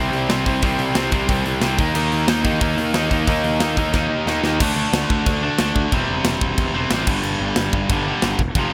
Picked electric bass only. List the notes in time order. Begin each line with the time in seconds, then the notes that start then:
Already playing: C2
0.12 C2
0.29 C2
0.46 C2
0.63 C2
0.79 C2
0.95 C2
1.12 C2
1.29 C2
1.46 C2
1.62 C2
1.79 D#2
1.95 D#2
2.12 D#2
2.27 D#2
2.44 D#2
2.61 D#2
2.77 D#2
2.94 D#2
3.11 D#2
3.27 D#2
3.44 D#2
3.61 D#2
3.77 D#2
3.94 D#2
4.10 D#2
4.26 D#2
4.43 D#2
4.60 D2
4.75 D2
4.93 D2
5.10 D2
5.26 D2
5.60 D2
5.75 D2
5.92 E1
6.09 E1
6.25 E1
6.42 E1
6.58 E1
6.74 E1
6.91 A1
7.07 G1
7.23 G1
7.40 G1
7.56 G1
7.73 G1
7.90 G1
8.22 G1
8.38 E1
8.55 F1